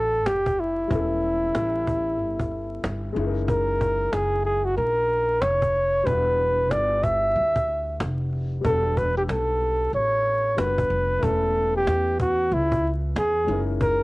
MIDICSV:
0, 0, Header, 1, 5, 480
1, 0, Start_track
1, 0, Tempo, 645161
1, 671, Time_signature, 4, 2, 24, 8
1, 10440, End_track
2, 0, Start_track
2, 0, Title_t, "Flugelhorn"
2, 0, Program_c, 0, 56
2, 0, Note_on_c, 0, 69, 90
2, 196, Note_on_c, 0, 67, 86
2, 208, Note_off_c, 0, 69, 0
2, 443, Note_on_c, 0, 64, 79
2, 454, Note_off_c, 0, 67, 0
2, 2357, Note_off_c, 0, 64, 0
2, 2596, Note_on_c, 0, 70, 87
2, 3072, Note_on_c, 0, 68, 81
2, 3084, Note_off_c, 0, 70, 0
2, 3305, Note_off_c, 0, 68, 0
2, 3310, Note_on_c, 0, 68, 82
2, 3457, Note_on_c, 0, 66, 79
2, 3468, Note_off_c, 0, 68, 0
2, 3544, Note_off_c, 0, 66, 0
2, 3548, Note_on_c, 0, 70, 92
2, 4028, Note_on_c, 0, 73, 97
2, 4040, Note_off_c, 0, 70, 0
2, 4507, Note_on_c, 0, 71, 89
2, 4519, Note_off_c, 0, 73, 0
2, 4990, Note_on_c, 0, 74, 96
2, 5001, Note_off_c, 0, 71, 0
2, 5235, Note_on_c, 0, 76, 110
2, 5246, Note_off_c, 0, 74, 0
2, 5953, Note_off_c, 0, 76, 0
2, 6438, Note_on_c, 0, 69, 91
2, 6679, Note_on_c, 0, 71, 88
2, 6690, Note_off_c, 0, 69, 0
2, 6820, Note_off_c, 0, 71, 0
2, 6824, Note_on_c, 0, 67, 78
2, 6865, Note_off_c, 0, 67, 0
2, 6919, Note_on_c, 0, 69, 79
2, 7365, Note_off_c, 0, 69, 0
2, 7398, Note_on_c, 0, 73, 92
2, 7880, Note_on_c, 0, 71, 91
2, 7891, Note_off_c, 0, 73, 0
2, 8359, Note_on_c, 0, 69, 94
2, 8370, Note_off_c, 0, 71, 0
2, 8740, Note_off_c, 0, 69, 0
2, 8750, Note_on_c, 0, 67, 93
2, 9055, Note_off_c, 0, 67, 0
2, 9084, Note_on_c, 0, 66, 85
2, 9326, Note_on_c, 0, 64, 97
2, 9337, Note_off_c, 0, 66, 0
2, 9606, Note_off_c, 0, 64, 0
2, 9804, Note_on_c, 0, 68, 88
2, 10156, Note_off_c, 0, 68, 0
2, 10281, Note_on_c, 0, 70, 94
2, 10440, Note_off_c, 0, 70, 0
2, 10440, End_track
3, 0, Start_track
3, 0, Title_t, "Grand piano"
3, 0, Program_c, 1, 0
3, 0, Note_on_c, 1, 55, 59
3, 0, Note_on_c, 1, 59, 53
3, 0, Note_on_c, 1, 62, 58
3, 0, Note_on_c, 1, 69, 61
3, 0, Note_on_c, 1, 78, 58
3, 628, Note_off_c, 1, 55, 0
3, 635, Note_off_c, 1, 59, 0
3, 642, Note_off_c, 1, 62, 0
3, 649, Note_off_c, 1, 78, 0
3, 652, Note_on_c, 1, 55, 62
3, 656, Note_off_c, 1, 69, 0
3, 666, Note_on_c, 1, 59, 54
3, 679, Note_on_c, 1, 61, 60
3, 693, Note_on_c, 1, 64, 55
3, 708, Note_on_c, 1, 69, 71
3, 2312, Note_off_c, 1, 55, 0
3, 2319, Note_off_c, 1, 59, 0
3, 2326, Note_off_c, 1, 61, 0
3, 2327, Note_on_c, 1, 56, 77
3, 2333, Note_off_c, 1, 64, 0
3, 2340, Note_off_c, 1, 69, 0
3, 2340, Note_on_c, 1, 61, 70
3, 2355, Note_on_c, 1, 63, 76
3, 2368, Note_on_c, 1, 64, 70
3, 2383, Note_on_c, 1, 68, 64
3, 2425, Note_off_c, 1, 68, 0
3, 2430, Note_on_c, 1, 70, 79
3, 4229, Note_off_c, 1, 56, 0
3, 4236, Note_off_c, 1, 61, 0
3, 4244, Note_off_c, 1, 63, 0
3, 4250, Note_off_c, 1, 64, 0
3, 4281, Note_off_c, 1, 70, 0
3, 4489, Note_on_c, 1, 55, 64
3, 4502, Note_on_c, 1, 62, 57
3, 4517, Note_on_c, 1, 64, 62
3, 4532, Note_on_c, 1, 66, 57
3, 4544, Note_on_c, 1, 71, 70
3, 6391, Note_off_c, 1, 55, 0
3, 6397, Note_off_c, 1, 62, 0
3, 6404, Note_off_c, 1, 64, 0
3, 6405, Note_on_c, 1, 55, 65
3, 6412, Note_off_c, 1, 66, 0
3, 6418, Note_off_c, 1, 71, 0
3, 6418, Note_on_c, 1, 59, 58
3, 6433, Note_on_c, 1, 62, 55
3, 6446, Note_on_c, 1, 66, 56
3, 6460, Note_on_c, 1, 69, 64
3, 7829, Note_off_c, 1, 55, 0
3, 7836, Note_off_c, 1, 59, 0
3, 7843, Note_off_c, 1, 62, 0
3, 7850, Note_off_c, 1, 66, 0
3, 7857, Note_off_c, 1, 69, 0
3, 7861, Note_on_c, 1, 55, 47
3, 7868, Note_on_c, 1, 59, 45
3, 7875, Note_on_c, 1, 62, 45
3, 7883, Note_on_c, 1, 66, 45
3, 7890, Note_on_c, 1, 70, 39
3, 7938, Note_on_c, 1, 71, 51
3, 7939, Note_off_c, 1, 70, 0
3, 8325, Note_on_c, 1, 57, 63
3, 8326, Note_off_c, 1, 59, 0
3, 8338, Note_on_c, 1, 59, 57
3, 8346, Note_off_c, 1, 55, 0
3, 8350, Note_on_c, 1, 61, 55
3, 8353, Note_off_c, 1, 62, 0
3, 8357, Note_off_c, 1, 66, 0
3, 8365, Note_on_c, 1, 64, 58
3, 8369, Note_off_c, 1, 71, 0
3, 8380, Note_on_c, 1, 71, 71
3, 9988, Note_off_c, 1, 57, 0
3, 9995, Note_off_c, 1, 59, 0
3, 10001, Note_off_c, 1, 61, 0
3, 10003, Note_on_c, 1, 56, 67
3, 10009, Note_off_c, 1, 64, 0
3, 10016, Note_off_c, 1, 71, 0
3, 10019, Note_on_c, 1, 61, 62
3, 10032, Note_on_c, 1, 63, 62
3, 10046, Note_on_c, 1, 64, 67
3, 10060, Note_on_c, 1, 70, 68
3, 10440, Note_off_c, 1, 56, 0
3, 10440, Note_off_c, 1, 61, 0
3, 10440, Note_off_c, 1, 63, 0
3, 10440, Note_off_c, 1, 64, 0
3, 10440, Note_off_c, 1, 70, 0
3, 10440, End_track
4, 0, Start_track
4, 0, Title_t, "Upright bass"
4, 0, Program_c, 2, 32
4, 0, Note_on_c, 2, 33, 86
4, 192, Note_off_c, 2, 33, 0
4, 192, Note_on_c, 2, 29, 87
4, 648, Note_off_c, 2, 29, 0
4, 674, Note_on_c, 2, 28, 93
4, 1129, Note_off_c, 2, 28, 0
4, 1154, Note_on_c, 2, 33, 85
4, 1630, Note_off_c, 2, 33, 0
4, 1630, Note_on_c, 2, 31, 89
4, 2087, Note_off_c, 2, 31, 0
4, 2110, Note_on_c, 2, 31, 82
4, 2339, Note_off_c, 2, 31, 0
4, 2353, Note_on_c, 2, 30, 97
4, 3043, Note_off_c, 2, 30, 0
4, 3073, Note_on_c, 2, 30, 89
4, 3528, Note_off_c, 2, 30, 0
4, 3552, Note_on_c, 2, 34, 91
4, 4008, Note_off_c, 2, 34, 0
4, 4030, Note_on_c, 2, 29, 85
4, 4487, Note_off_c, 2, 29, 0
4, 4512, Note_on_c, 2, 28, 95
4, 4993, Note_off_c, 2, 28, 0
4, 4993, Note_on_c, 2, 31, 76
4, 5448, Note_off_c, 2, 31, 0
4, 5472, Note_on_c, 2, 38, 88
4, 5928, Note_off_c, 2, 38, 0
4, 5952, Note_on_c, 2, 29, 86
4, 6408, Note_off_c, 2, 29, 0
4, 6432, Note_on_c, 2, 28, 99
4, 6888, Note_off_c, 2, 28, 0
4, 6908, Note_on_c, 2, 35, 80
4, 7365, Note_off_c, 2, 35, 0
4, 7387, Note_on_c, 2, 33, 83
4, 7845, Note_off_c, 2, 33, 0
4, 7869, Note_on_c, 2, 30, 90
4, 8098, Note_off_c, 2, 30, 0
4, 8110, Note_on_c, 2, 29, 93
4, 8339, Note_off_c, 2, 29, 0
4, 8353, Note_on_c, 2, 28, 100
4, 8808, Note_off_c, 2, 28, 0
4, 8829, Note_on_c, 2, 40, 83
4, 9286, Note_off_c, 2, 40, 0
4, 9311, Note_on_c, 2, 37, 100
4, 9767, Note_off_c, 2, 37, 0
4, 9789, Note_on_c, 2, 40, 94
4, 10018, Note_off_c, 2, 40, 0
4, 10030, Note_on_c, 2, 30, 100
4, 10440, Note_off_c, 2, 30, 0
4, 10440, End_track
5, 0, Start_track
5, 0, Title_t, "Cajon"
5, 194, Note_on_c, 9, 38, 112
5, 268, Note_off_c, 9, 38, 0
5, 343, Note_on_c, 9, 36, 89
5, 418, Note_off_c, 9, 36, 0
5, 436, Note_on_c, 9, 38, 39
5, 510, Note_off_c, 9, 38, 0
5, 674, Note_on_c, 9, 36, 97
5, 748, Note_off_c, 9, 36, 0
5, 912, Note_on_c, 9, 38, 37
5, 986, Note_off_c, 9, 38, 0
5, 1152, Note_on_c, 9, 38, 92
5, 1226, Note_off_c, 9, 38, 0
5, 1395, Note_on_c, 9, 36, 91
5, 1469, Note_off_c, 9, 36, 0
5, 1632, Note_on_c, 9, 38, 48
5, 1706, Note_off_c, 9, 38, 0
5, 1778, Note_on_c, 9, 38, 37
5, 1782, Note_on_c, 9, 36, 79
5, 1852, Note_off_c, 9, 38, 0
5, 1857, Note_off_c, 9, 36, 0
5, 1870, Note_on_c, 9, 38, 39
5, 1945, Note_off_c, 9, 38, 0
5, 2112, Note_on_c, 9, 38, 121
5, 2186, Note_off_c, 9, 38, 0
5, 2354, Note_on_c, 9, 38, 35
5, 2428, Note_off_c, 9, 38, 0
5, 2591, Note_on_c, 9, 36, 112
5, 2666, Note_off_c, 9, 36, 0
5, 2834, Note_on_c, 9, 36, 85
5, 2909, Note_off_c, 9, 36, 0
5, 3071, Note_on_c, 9, 38, 96
5, 3146, Note_off_c, 9, 38, 0
5, 3307, Note_on_c, 9, 38, 39
5, 3381, Note_off_c, 9, 38, 0
5, 3549, Note_on_c, 9, 38, 51
5, 3624, Note_off_c, 9, 38, 0
5, 3790, Note_on_c, 9, 38, 44
5, 3865, Note_off_c, 9, 38, 0
5, 4030, Note_on_c, 9, 38, 116
5, 4104, Note_off_c, 9, 38, 0
5, 4182, Note_on_c, 9, 36, 90
5, 4256, Note_off_c, 9, 36, 0
5, 4273, Note_on_c, 9, 38, 39
5, 4348, Note_off_c, 9, 38, 0
5, 4513, Note_on_c, 9, 36, 115
5, 4587, Note_off_c, 9, 36, 0
5, 4751, Note_on_c, 9, 38, 41
5, 4826, Note_off_c, 9, 38, 0
5, 4993, Note_on_c, 9, 38, 104
5, 5067, Note_off_c, 9, 38, 0
5, 5233, Note_on_c, 9, 36, 100
5, 5308, Note_off_c, 9, 36, 0
5, 5472, Note_on_c, 9, 38, 51
5, 5547, Note_off_c, 9, 38, 0
5, 5617, Note_on_c, 9, 38, 34
5, 5623, Note_on_c, 9, 36, 83
5, 5692, Note_off_c, 9, 38, 0
5, 5697, Note_off_c, 9, 36, 0
5, 5713, Note_on_c, 9, 38, 42
5, 5788, Note_off_c, 9, 38, 0
5, 5954, Note_on_c, 9, 38, 118
5, 6028, Note_off_c, 9, 38, 0
5, 6196, Note_on_c, 9, 38, 43
5, 6270, Note_off_c, 9, 38, 0
5, 6433, Note_on_c, 9, 36, 108
5, 6507, Note_off_c, 9, 36, 0
5, 6675, Note_on_c, 9, 36, 85
5, 6749, Note_off_c, 9, 36, 0
5, 6914, Note_on_c, 9, 38, 94
5, 6988, Note_off_c, 9, 38, 0
5, 7151, Note_on_c, 9, 38, 39
5, 7225, Note_off_c, 9, 38, 0
5, 7393, Note_on_c, 9, 38, 49
5, 7468, Note_off_c, 9, 38, 0
5, 7632, Note_on_c, 9, 38, 42
5, 7707, Note_off_c, 9, 38, 0
5, 7873, Note_on_c, 9, 38, 113
5, 7947, Note_off_c, 9, 38, 0
5, 8022, Note_on_c, 9, 36, 93
5, 8096, Note_off_c, 9, 36, 0
5, 8116, Note_on_c, 9, 38, 41
5, 8191, Note_off_c, 9, 38, 0
5, 8352, Note_on_c, 9, 36, 108
5, 8427, Note_off_c, 9, 36, 0
5, 8593, Note_on_c, 9, 38, 42
5, 8668, Note_off_c, 9, 38, 0
5, 8832, Note_on_c, 9, 38, 96
5, 8907, Note_off_c, 9, 38, 0
5, 9073, Note_on_c, 9, 36, 95
5, 9148, Note_off_c, 9, 36, 0
5, 9312, Note_on_c, 9, 38, 50
5, 9386, Note_off_c, 9, 38, 0
5, 9457, Note_on_c, 9, 38, 41
5, 9462, Note_on_c, 9, 36, 92
5, 9531, Note_off_c, 9, 38, 0
5, 9537, Note_off_c, 9, 36, 0
5, 9550, Note_on_c, 9, 38, 44
5, 9624, Note_off_c, 9, 38, 0
5, 9793, Note_on_c, 9, 38, 117
5, 9867, Note_off_c, 9, 38, 0
5, 10034, Note_on_c, 9, 38, 44
5, 10109, Note_off_c, 9, 38, 0
5, 10273, Note_on_c, 9, 36, 114
5, 10347, Note_off_c, 9, 36, 0
5, 10440, End_track
0, 0, End_of_file